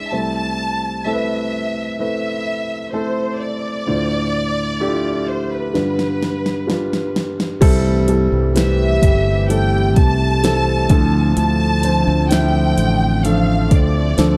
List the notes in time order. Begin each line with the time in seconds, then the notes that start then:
Already playing: G#3 D4 E4 B4 D5 E5
0.11 C2 C3 A3 C4 E4 C5 A5
1.05 A3 C4 E4 A4 E5
1.13 B4
1.99 A3 C4 E4 B4 E5
2.93 A3 C4 E4 A4 C5
3.40 D5
3.86 D2 A2 A3 D4 F4 C5
4.80 A3 D4 E4 G4
4.88 F4
5.28 C5
5.52 B4
5.74 G2 D3 G3 D4 F4 B4, snare
5.99 snare
6.23 snare
6.46 snare
6.67 G3 D4 F4 B4, snare
6.93 snare
7.16 snare
7.40 snare
7.61 C2 G2 E3 G3 A3 C4 E4 G4 A4, kick, closed hi-hat, crash
8.08 G3 C4 E4 A4, closed hi-hat
8.32 C2
8.55 G3 C4 E4 B4 E5, snare, closed hi-hat
9.02 G1, kick, closed hi-hat
9.49 G3 C4 E4 A4 G5, closed hi-hat
9.96 C2 A5, kick, closed hi-hat
10.43 G3 C4 E4 A4, snare, closed hi-hat
10.89 D2 A2 D3 F3 A3 C4 D4 A4, kick, closed hi-hat
11.37 D2 A5, closed hi-hat
11.83 F3 C4 D4 C5, closed hi-hat
12.07 D2
12.30 F3 C4 D4 E4 G5, snare, closed hi-hat
12.78 A1, closed hi-hat
13.24 F3 C4 D4 A4 F5, closed hi-hat
13.71 D2 D5, kick, closed hi-hat
14.17 D2 F3 C4 D4 A4, snare, closed hi-hat